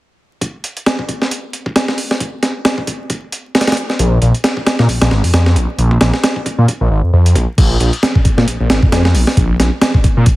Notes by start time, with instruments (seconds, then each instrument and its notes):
0.41 kick, closed hi-hat
0.64 closed hi-hat
0.77 closed hi-hat
0.86 snare, closed hi-hat
0.99 kick
1.09 kick, closed hi-hat
1.22 snare
1.31 closed hi-hat
1.53 closed hi-hat
1.66 kick
1.76 snare, closed hi-hat
1.88 snare
1.98 open hi-hat
2.11 snare
2.20 kick, closed hi-hat
2.43 snare, closed hi-hat
2.65 snare, closed hi-hat
2.78 kick
2.87 kick, closed hi-hat
3.10 kick, closed hi-hat
3.32 closed hi-hat
3.55 snare, closed hi-hat
3.61 snare, closed hi-hat
3.67 snare, closed hi-hat
3.72 snare, closed hi-hat
3.77 closed hi-hat
3.90 snare
3.99 detuned saw bass A#1, kick, closed hi-hat
4.22 detuned saw bass A#1, closed hi-hat
4.34 closed hi-hat
4.44 snare, closed hi-hat
4.57 kick
4.67 snare, closed hi-hat
4.79 detuned saw bass A#2, snare
4.89 detuned saw bass A#1, open hi-hat
5.01 detuned saw bass A#1, snare, closed hi-hat
5.11 detuned saw bass G#1, snare
5.24 detuned saw bass F2, open hi-hat
5.33 detuned saw bass F2, snare, closed hi-hat
5.46 snare
5.56 detuned saw bass A#1, closed hi-hat
5.78 detuned saw bass A#1, closed hi-hat
5.91 kick
6.01 detuned saw bass A#1, snare, closed hi-hat
6.14 snare
6.24 snare, closed hi-hat
6.36 kick
6.46 kick, closed hi-hat
6.58 detuned saw bass A#2
6.68 kick, closed hi-hat
6.81 detuned saw bass A#1
6.91 detuned saw bass G#1
7.03 detuned saw bass F2
7.13 detuned saw bass F2
7.26 closed hi-hat
7.35 detuned saw bass A#1, kick, closed hi-hat
7.58 detuned saw bass A#1, kick, closed hi-hat, crash
7.80 detuned saw bass A#1, closed hi-hat
7.93 closed hi-hat
8.03 snare, closed hi-hat
8.15 kick
8.25 kick, closed hi-hat
8.37 detuned saw bass A#2, snare
8.47 detuned saw bass A#1, closed hi-hat
8.60 detuned saw bass A#1
8.70 detuned saw bass G#1, snare, closed hi-hat
8.83 detuned saw bass F2, kick
8.92 detuned saw bass F2, snare, closed hi-hat
9.05 snare
9.14 detuned saw bass A#1, open hi-hat
9.27 snare
9.37 detuned saw bass A#1, kick, closed hi-hat
9.59 detuned saw bass A#1, snare, closed hi-hat
9.82 snare, closed hi-hat
9.94 kick
10.04 kick, closed hi-hat
10.17 detuned saw bass A#2
10.26 kick, closed hi-hat